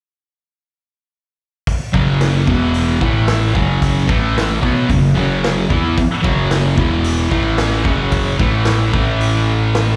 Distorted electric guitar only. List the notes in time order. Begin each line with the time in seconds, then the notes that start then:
1.93 F#2 C#3 F#3
2.47 E2 B2 E3
3.01 A2 E3 A3
3.53 F#2 C#3 F#3
4.07 A2 E3 A3
4.61 B2 F#3 B3
4.87 F#2 C#3
5.14 F#2 C#3 F#3
5.69 E3 B3 E4
6.22 F#2 C#3 F#3
6.76 E2 B2 E3
7.30 A2 E3 A3
7.84 F#2 C#3 F#3
8.38 A2 E3 A3
8.92 A2 E3 A3